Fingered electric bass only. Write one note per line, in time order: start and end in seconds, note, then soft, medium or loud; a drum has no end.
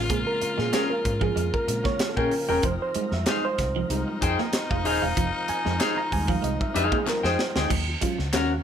0.10 0.22 A#1 loud
0.42 muted fingered electric bass stroke soft
0.58 0.70 A#2 loud
1.05 1.29 G#2 medium
1.36 1.49 F2 loud
1.68 1.81 A#2 loud
2.17 2.28 A#2 medium
2.49 2.61 E1 medium
2.63 2.76 F1 loud
2.95 muted fingered electric bass stroke soft
3.12 3.23 F2 medium
3.58 3.83 C2 medium
3.90 4.03 C2 loud
4.22 4.35 F2 medium
4.71 4.86 F1 medium
4.86 4.99 D#1 medium
5.03 5.14 E1 medium
5.17 5.30 F1 medium
5.49 muted fingered electric bass stroke soft
5.66 5.77 F2 loud
6.12 6.36 D#2 medium
6.43 6.56 C2 loud
6.76 6.88 F2 loud
7.24 7.35 F2 loud
7.56 7.67 D2 loud
7.70 7.94 D#2 loud
8.19 8.31 C#2 medium
8.34 8.58 D#2 loud